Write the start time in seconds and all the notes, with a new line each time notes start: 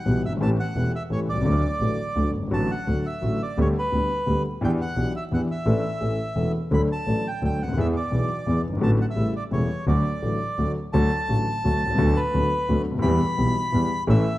Already playing: F#5
0.06 B1 B2 E3 G3 B3 G4
0.24 G1 E5
0.28 F#1
0.32 G1
0.36 G#1 E3
0.41 A1 A2 A3 C#4 G4 A5
0.60 F#5
0.76 E1 E2 E3 A3 C#4 G4
0.96 E5
1.10 A1 A2 E3 A3 C#4 G4 C#5
1.28 C2 D5
1.33 B1 C2
1.41 C#2 D2 D3 F#3 A3
1.45 D2 F#4
1.80 A1 A2 D3 F#3 A3 F#4
2.15 D2 D3 F#3 A3 F#4
2.34 G1
2.38 F#1
2.43 G1
2.47 G#1 A1 D3 F#3
2.51 A1 A2 A3 F#4 A5
2.71 F#5
2.87 D2 D3 F#3 A3 F#4
3.06 E5
3.21 A1 A2 D3 F#3 A3 F#4
3.42 D5
3.57 D2 D3 G3 B3 G4 C#5
3.79 B4
3.92 D2 D3 G3 B3 G4
4.26 D2 D3 G3 B3 G4
4.61 E2 E3 B3 D4 G4 G5
4.81 F#5
4.96 B1 B2 E3 B3 D4 G4
5.16 E5
5.32 E2 E3 B3 D4 G4 F#5
5.51 E5
5.66 A1 A2 E3 A3 D4 A4
6.01 A1 A2 E3 A3 C#4 A4
6.35 E1 E2 E3 A3 C#4 A4
6.71 D2 D3 F#3 A3 D4 A4 B5
6.92 A5
7.07 A1 A2 F#3 A3 D4 A4
7.28 G5
7.41 D2 D3 F#3 A3 D4 A4 G5
7.60 C#2 D2 F#5
7.68 D2
7.73 D#2
7.77 E2 E3 G#3 B3 G#4 E5
7.97 D5
8.11 B1 B2 E3 G#3 B3 G#4
8.46 E2 E3 G#3 B3 G#4
8.65 F#1 G1
8.73 G1 G#1
8.81 A1 A2 D3 F#3 A3 F#4 A5
9.02 F#5
9.10 E5
9.16 A1 A2 C#3 G3 A3 E4
9.36 D5
9.51 E1 E2 C#3 G3 A3 E4 C#5
9.86 D2 D3 F#3 A3 F#4 D5
10.22 A1 A2 D3 F#3 A3 F#4
10.58 D2 D3 F#3 A3 F#4
10.93 D2 D3 F#3 A3 F#4 A5
11.29 A1 A2 D3 F#3 A3 F#4
11.64 D2 D3 F#3 A3 F#4
11.82 C2
11.86 B1 C2
11.94 C#2 D2 D3 F#3 F#4
11.99 D2 B3
12.16 B4
12.33 D2 D3 F#3 B3 F#4
12.69 D2 D3 F#3 B3 F#4
12.86 D2
12.91 C#2
12.95 D2 D#2
13.02 E2 E3 G3 B3 G4 B5
13.37 B1 B2 E3 G3 B3 G4
13.72 E2 E3 G3 B3 G4
14.07 A1 A2 E3 A3 C#4 A4 E5